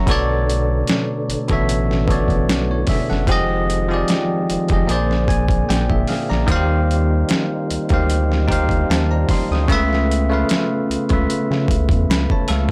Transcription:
Already playing: tine electric piano A#5
0.06 analog synth bass B1, tine electric piano B2 B3 A4 C#5, tonewheel organ D3 A3 B3 D4, kick, closed hi-hat
0.11 tine electric piano D5
0.50 closed hi-hat
0.87 snare, closed hi-hat
1.29 analog synth bass A1, closed hi-hat
1.48 analog synth bass A1, tine electric piano B2 B3 A4 C#5, kick, closed hi-hat
1.53 tine electric piano E5
1.69 closed hi-hat
1.91 snare
2.07 tine electric piano B2 B3 A4 C#5, kick, closed hi-hat
2.12 tine electric piano D5
2.28 kick, closed hi-hat
2.49 analog synth bass B1, snare, closed hi-hat
2.71 tine electric piano E4 C#5
2.87 tine electric piano G#4 E5, kick, snare, open hi-hat
3.10 analog synth bass F#1, tine electric piano A4 F#5, snare
3.27 analog synth bass F1, tonewheel organ D#3 G#3 C4 F4, tine electric piano F3 C4 G4 G#4, kick, closed hi-hat
3.32 tine electric piano D#5
3.70 closed hi-hat
3.89 tine electric piano F3 C4 G4 G#4
3.94 tine electric piano D5
4.08 snare, closed hi-hat
4.50 analog synth bass F1, closed hi-hat
4.68 analog synth bass F1, tine electric piano F3 C4 G4 G#4, kick, closed hi-hat
4.73 tine electric piano D#5
4.87 analog synth bass A#1, tine electric piano A#2 A#3 G#4 C5, tonewheel organ D3 A#3 G#4, closed hi-hat
4.91 tine electric piano D5
5.11 snare
5.28 tine electric piano G#5, kick, closed hi-hat
5.48 kick, closed hi-hat
5.69 analog synth bass A#1, tine electric piano F4 D5 G5, snare, closed hi-hat
5.90 tine electric piano G#4 E5, kick
6.08 tine electric piano G#4 F5, snare, open hi-hat
6.30 analog synth bass A#1, tine electric piano D5 A#5, snare
6.46 analog synth bass D#2, tine electric piano D#3 A#3 F#4 C5, tonewheel organ G3 D#4 F4, kick, closed hi-hat
6.52 tine electric piano F5
6.56 tine electric piano G4
6.91 closed hi-hat
7.29 snare, closed hi-hat
7.70 analog synth bass D2, closed hi-hat
7.89 analog synth bass D2, tine electric piano A#3 D#4 G4 C5, kick, closed hi-hat
7.94 tine electric piano F5
8.10 closed hi-hat
8.32 snare
8.48 tine electric piano A#3 D#4 G4 C5, kick
8.52 tine electric piano F5, closed hi-hat
8.69 kick, closed hi-hat
8.90 analog synth bass D#2, tine electric piano C5 A5, snare, closed hi-hat
9.11 tine electric piano D5 A#5
9.29 tine electric piano D#5 C6, kick, snare, open hi-hat
9.51 analog synth bass D2, tine electric piano G5 D#6, snare
9.68 analog synth bass C#2, tine electric piano C#3 A3 F4 B4, tonewheel organ C#3 A3 B3, kick, closed hi-hat
9.72 tine electric piano E5
9.93 snare
10.11 closed hi-hat
10.29 tine electric piano C#3 A3 F4 B4
10.34 tine electric piano F5
10.49 snare, closed hi-hat
10.90 analog synth bass C#2, closed hi-hat
11.09 analog synth bass C#2, tine electric piano C#3 A3 F4 B4, kick, closed hi-hat
11.13 tine electric piano E5
11.30 closed hi-hat
11.51 analog synth bass C#3, snare
11.68 analog synth bass C#2, kick, closed hi-hat
11.89 analog synth bass E2, kick, closed hi-hat
12.09 analog synth bass C#2, tine electric piano B5, snare, closed hi-hat
12.30 tine electric piano C#5 A5, kick
12.48 analog synth bass C#2, tine electric piano A3 A4 F5, snare, closed hi-hat

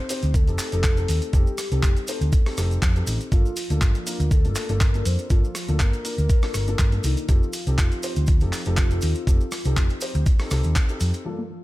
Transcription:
Already playing: soft synth lead C5
0.09 grand piano C4 D#4 G4 C5, open hi-hat, maracas
0.23 fingered electric bass D2, closed hi-hat, maracas
0.34 soft synth lead A4, kick, closed hi-hat, maracas
0.47 fingered electric bass F1, grand piano C4 D#4 G4 A4, closed hi-hat, maracas
0.59 clap, open hi-hat, maracas
0.72 fingered electric bass F1, grand piano C4 D#4 G4 A4, closed hi-hat, maracas
0.83 kick, clap, closed hi-hat, maracas
0.97 grand piano C4 D#4 G4 A4, closed hi-hat, maracas
1.08 fingered electric bass D#2, open hi-hat, maracas
1.22 closed hi-hat, maracas
1.33 fingered electric bass F1, grand piano C4 D#4 G4 A4, soft synth lead G4, kick, closed hi-hat, maracas
1.47 maracas
1.58 cross-stick, open hi-hat, maracas
1.71 fingered electric bass C2, grand piano C4 D#4 G4 A4, closed hi-hat, maracas
1.83 fingered electric bass F1, kick, clap, closed hi-hat, maracas
1.97 closed hi-hat, maracas
2.07 grand piano C4 D#4 G4 C5, soft synth lead A4, open hi-hat, maracas
2.21 fingered electric bass D2, closed hi-hat, maracas
2.32 kick, closed hi-hat, maracas
2.46 grand piano C4 D#4 G4 A4, cross-stick, open hi-hat, maracas
2.57 fingered electric bass F1, grand piano C4 D#4 G4 A4, cross-stick, open hi-hat, maracas
2.71 closed hi-hat, maracas
2.82 fingered electric bass F2, kick, clap, closed hi-hat, maracas
2.95 grand piano C4 D#4 G4 A4, closed hi-hat, maracas
3.07 fingered electric bass A1, soft synth lead D#4, open hi-hat, maracas
3.21 closed hi-hat, maracas
3.32 fingered electric bass G1, grand piano A#3 D4 F4 A4, soft synth lead F4, kick, closed hi-hat, maracas
3.46 maracas
3.56 open hi-hat, maracas
3.70 fingered electric bass D2, grand piano A#3 D4 F4 A4, closed hi-hat, maracas
3.81 fingered electric bass G1, soft synth lead F4, kick, clap, closed hi-hat, maracas
3.95 closed hi-hat, maracas
4.06 grand piano A#3 D4 F4 A#4, open hi-hat, maracas
4.20 fingered electric bass D2, closed hi-hat, maracas
4.31 soft synth lead A4, kick, closed hi-hat, maracas
4.44 fingered electric bass G1, grand piano A#3 D4 F4 A4, closed hi-hat, maracas
4.55 clap, open hi-hat, maracas
4.69 fingered electric bass G1, grand piano A#3 D4 F4 A4, closed hi-hat, maracas
4.81 soft synth lead A#4, kick, clap, closed hi-hat, maracas
4.94 grand piano A#3 D4 F4 A4, closed hi-hat, maracas
5.05 fingered electric bass F2, soft synth lead C5, open hi-hat, maracas
5.19 closed hi-hat, maracas
5.30 fingered electric bass G1, grand piano A#3 D4 F4 A4, soft synth lead F4, kick, closed hi-hat, maracas
5.44 maracas
5.55 cross-stick, open hi-hat, maracas
5.68 fingered electric bass D2, grand piano A#3 D4 F4 A4, closed hi-hat, maracas
5.80 fingered electric bass G1, soft synth lead A#4, kick, clap, closed hi-hat, maracas
5.93 closed hi-hat, maracas
6.04 grand piano A#3 D4 F4 A#4, open hi-hat, maracas
6.18 fingered electric bass D2, closed hi-hat, maracas
6.29 kick, closed hi-hat, maracas
6.42 grand piano A#3 D4 F4 A4, cross-stick, open hi-hat, maracas
6.54 fingered electric bass G1, cross-stick, open hi-hat, maracas
6.68 grand piano A#3 D4 F4 A4, closed hi-hat, maracas
6.79 fingered electric bass G2, kick, clap, closed hi-hat, maracas
6.92 grand piano A#3 D4 F4 A4, closed hi-hat, maracas
7.04 fingered electric bass C2, soft synth lead D#4, open hi-hat, maracas
7.17 closed hi-hat, maracas
7.28 fingered electric bass F1, grand piano C4 D#4 G4 A4, soft synth lead F4, kick, closed hi-hat, maracas
7.43 maracas
7.53 open hi-hat, maracas
7.67 fingered electric bass C2, grand piano C4 D#4 G4 A4, closed hi-hat, maracas
7.78 fingered electric bass F1, soft synth lead F4, kick, clap, closed hi-hat, maracas
7.92 closed hi-hat, maracas
8.03 grand piano C4 D#4 G4 C5, open hi-hat, maracas
8.16 fingered electric bass D2, closed hi-hat, maracas
8.27 soft synth lead F4, kick, closed hi-hat, maracas
8.40 fingered electric bass F1, grand piano C4 D#4 G4 A4, closed hi-hat, maracas
8.53 clap, open hi-hat, maracas
8.65 fingered electric bass F1, grand piano C4 D#4 G4 A4, closed hi-hat, maracas
8.77 kick, clap, closed hi-hat, maracas
8.91 grand piano C4 D#4 G4 A4, closed hi-hat, maracas
9.01 fingered electric bass D#2, open hi-hat, maracas
9.15 closed hi-hat, maracas
9.27 fingered electric bass F1, grand piano C4 D#4 G4 A4, kick, closed hi-hat, maracas
9.41 maracas
9.51 cross-stick, open hi-hat, maracas
9.65 fingered electric bass C2, grand piano C4 D#4 G4 A4, closed hi-hat, maracas
9.77 fingered electric bass F1, kick, clap, closed hi-hat, maracas
9.90 closed hi-hat, maracas
10.01 grand piano C4 D#4 G4 C5, open hi-hat, maracas
10.15 fingered electric bass D2, closed hi-hat, maracas
10.26 kick, closed hi-hat, maracas
10.39 grand piano C4 D#4 G4 A4, cross-stick, open hi-hat, maracas
10.51 fingered electric bass C2, grand piano C4 D#4 G4 A4, cross-stick, open hi-hat, maracas
10.63 fingered electric bass D#2, closed hi-hat, maracas
10.76 kick, clap, closed hi-hat, maracas
10.89 grand piano C4 D#4 G4 A4, closed hi-hat, maracas
11.00 fingered electric bass F2, open hi-hat, maracas
11.14 closed hi-hat, maracas
11.25 grand piano G2 A#3 D4 F4 A4, synth arpeggio sound F3, soft synth lead F4
11.39 synth arpeggio sound A#3
11.50 synth arpeggio sound F3

